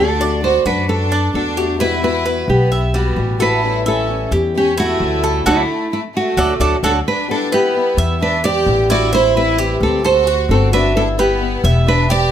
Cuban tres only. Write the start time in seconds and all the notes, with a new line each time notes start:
Already playing: A4
0.21 D5
0.66 F#4
1.12 D4
1.57 G4
1.80 E4
2.26 B4
2.72 E5
2.94 G3
3.40 A4
3.86 E5
4.32 G4
4.77 E4
5.24 A4
5.46 F#4 A4 D5
6.37 F#4 A4 D5
6.61 F#4 A4 D5
6.84 F#4 A4 D5
7.52 B4
7.98 E5
8.44 G4
8.90 E4
9.13 E4
9.58 G4
10.05 A4
10.27 F#4
10.73 E5
11.19 B4
11.65 E5
12.10 G4